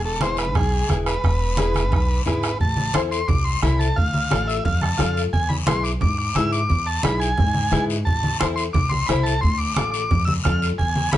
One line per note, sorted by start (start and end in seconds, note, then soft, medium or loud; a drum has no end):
0.00 0.55 E1 medium
0.05 0.21 A4 medium
0.21 0.45 E4 medium
0.21 0.45 G#4 medium
0.21 0.46 B4 medium
0.21 0.38 C5 loud
0.21 bombo rim medium
0.21 high conga medium
0.21 short guiro medium
0.37 0.56 B4 medium
0.37 bombo rim medium
0.37 short guiro medium
0.55 0.83 B1 loud
0.55 0.89 G#4 medium
0.55 bombo low medium
0.55 bombo rim medium
0.55 high conga soft
0.55 low conga medium
0.55 long guiro medium
0.89 1.17 E1 medium
0.89 1.14 E4 medium
0.89 0.98 G#4 medium
0.89 1.14 G#4 medium
0.89 1.14 B4 medium
0.89 bombo low medium
0.89 bombo rim medium
0.89 high conga medium
0.89 short guiro medium
1.06 2.22 B4 loud
1.06 bombo rim medium
1.06 short guiro medium
1.23 1.93 E1 loud
1.23 bombo low medium
1.23 bombo rim medium
1.23 high conga soft
1.23 long guiro medium
1.57 1.82 E4 medium
1.57 1.82 G#4 medium
1.57 1.83 B4 medium
1.57 bombo rim medium
1.57 high conga medium
1.57 short guiro medium
1.74 bombo rim medium
1.74 high conga medium
1.74 short guiro medium
1.92 2.20 B1 loud
1.92 bombo low medium
1.92 bombo rim medium
1.92 high conga soft
1.92 low conga medium
1.92 long guiro medium
2.26 2.54 G#1 medium
2.26 2.50 E4 medium
2.26 2.50 G#4 medium
2.26 2.58 B4 medium
2.26 2.50 B4 medium
2.26 bombo low medium
2.26 bombo rim medium
2.26 high conga medium
2.26 short guiro medium
2.43 bombo rim medium
2.43 short guiro medium
2.60 2.88 A1 loud
2.60 2.96 A5 medium
2.60 bombo low medium
2.60 high conga soft
2.60 long guiro medium
2.77 high conga medium
2.94 3.22 E2 medium
2.94 3.18 E4 medium
2.94 3.19 A4 medium
2.94 3.19 C5 medium
2.94 3.02 C6 medium
2.94 bombo rim medium
2.94 high conga medium
2.94 short guiro medium
3.11 3.29 C6 medium
3.11 short guiro medium
3.28 3.56 C2 medium
3.28 3.44 D6 medium
3.28 bombo low medium
3.28 high conga soft
3.28 low conga medium
3.28 long guiro medium
3.45 3.61 C6 medium
3.62 3.90 C2 loud
3.62 3.86 E4 medium
3.62 3.87 A4 medium
3.62 3.87 C5 medium
3.62 3.80 B5 medium
3.62 bombo rim medium
3.62 high conga medium
3.62 short guiro medium
3.79 3.97 A5 medium
3.79 short guiro medium
3.96 4.25 D2 loud
3.96 4.49 F5 medium
3.96 bombo low medium
3.96 high conga soft
3.96 long guiro medium
4.14 high conga medium
4.30 4.59 A1 medium
4.30 4.55 F4 medium
4.30 4.55 A4 medium
4.30 4.55 D5 medium
4.30 bombo rim medium
4.30 high conga medium
4.30 short guiro medium
4.48 4.64 E5 medium
4.48 short guiro medium
4.65 4.93 F2 loud
4.65 4.81 F5 medium
4.65 bombo low medium
4.65 high conga soft
4.65 low conga medium
4.65 long guiro medium
4.81 4.99 A5 medium
4.81 bombo rim medium
4.81 high conga medium
4.98 5.27 F2 loud
4.98 5.23 F4 medium
4.98 5.23 A4 medium
4.98 5.23 D5 medium
4.98 5.22 F5 medium
4.98 bombo rim medium
4.98 high conga medium
4.98 low conga medium
4.98 short guiro medium
5.17 short guiro medium
5.33 5.61 E2 loud
5.33 5.51 G#5 loud
5.33 bombo low medium
5.33 high conga soft
5.33 long guiro medium
5.49 5.57 B5 medium
5.49 high conga medium
5.66 5.95 B1 medium
5.66 5.91 E4 medium
5.66 5.91 G#4 medium
5.66 5.91 B4 medium
5.66 5.85 C6 medium
5.66 bombo rim medium
5.66 high conga loud
5.66 short guiro medium
5.84 5.92 D6 medium
5.84 short guiro medium
6.01 6.29 G#2 medium
6.01 6.17 D6 medium
6.01 bombo low medium
6.01 high conga soft
6.01 low conga medium
6.01 long guiro medium
6.18 6.36 D6 medium
6.35 6.63 G#2 loud
6.35 6.60 E4 medium
6.35 6.60 G#4 medium
6.35 6.60 B4 medium
6.35 6.51 E6 medium
6.35 bombo rim medium
6.35 high conga medium
6.35 short guiro medium
6.52 6.88 D6 loud
6.52 short guiro medium
6.69 6.97 E2 loud
6.69 bombo low medium
6.69 high conga soft
6.69 long guiro medium
6.86 7.03 A5 medium
7.03 7.31 B1 medium
7.03 7.28 E4 medium
7.03 7.28 G#4 medium
7.03 7.28 B4 medium
7.03 7.20 B5 loud
7.03 bombo rim medium
7.03 high conga medium
7.03 short guiro medium
7.20 7.85 G#5 loud
7.20 short guiro medium
7.38 7.66 G#2 medium
7.38 bombo low loud
7.38 high conga soft
7.38 low conga medium
7.38 long guiro medium
7.54 high conga medium
7.71 7.99 G#2 loud
7.71 7.96 E4 medium
7.71 7.96 G#4 medium
7.71 7.96 B4 medium
7.71 bombo rim medium
7.71 high conga medium
7.71 low conga medium
7.71 short guiro medium
7.90 short guiro medium
8.05 8.34 A1 medium
8.05 8.37 A5 medium
8.05 bombo low medium
8.05 high conga soft
8.05 long guiro medium
8.23 high conga medium
8.40 8.68 E2 medium
8.40 8.64 E4 medium
8.40 8.64 A4 medium
8.40 8.64 C5 medium
8.40 8.47 C6 medium
8.40 bombo rim medium
8.40 high conga medium
8.40 short guiro medium
8.56 8.64 C6 loud
8.56 short guiro medium
8.73 9.02 C2 medium
8.73 8.91 D6 loud
8.73 bombo low medium
8.73 high conga soft
8.73 low conga medium
8.73 long guiro medium
8.89 9.08 C6 loud
8.89 high conga medium
9.06 9.37 C2 loud
9.06 9.32 E4 medium
9.06 9.33 A4 medium
9.06 9.33 C5 medium
9.06 9.25 B5 loud
9.06 bombo rim medium
9.06 high conga medium
9.06 short guiro medium
9.23 9.40 A5 loud
9.23 short guiro medium
9.41 9.70 D2 loud
9.41 9.60 C6 loud
9.41 bombo low medium
9.41 high conga soft
9.41 long guiro medium
9.58 9.73 D6 medium
9.75 10.05 A1 medium
9.75 10.01 F4 medium
9.75 10.01 A4 medium
9.75 10.01 D5 medium
9.75 9.90 D6 loud
9.75 bombo rim medium
9.75 high conga loud
9.75 short guiro medium
9.91 10.24 D6 loud
9.91 short guiro medium
10.11 10.38 F2 medium
10.11 bombo low loud
10.11 high conga soft
10.11 low conga medium
10.11 long guiro medium
10.25 10.34 E6 loud
10.25 high conga medium
10.44 10.73 F2 loud
10.44 10.69 F4 medium
10.44 10.69 A4 medium
10.44 10.69 D5 medium
10.44 10.68 F6 loud
10.44 bombo low medium
10.44 bombo rim medium
10.44 high conga medium
10.44 short guiro medium
10.62 short guiro medium
10.78 11.06 E2 loud
10.78 11.10 G#5 medium
10.78 bombo low medium
10.78 high conga soft
10.78 long guiro medium
10.96 high conga medium
11.12 11.18 B1 medium
11.12 11.18 E4 medium
11.12 11.18 G#4 medium
11.12 11.18 B4 medium
11.12 11.18 B5 loud
11.12 bombo rim medium
11.12 high conga medium
11.12 short guiro medium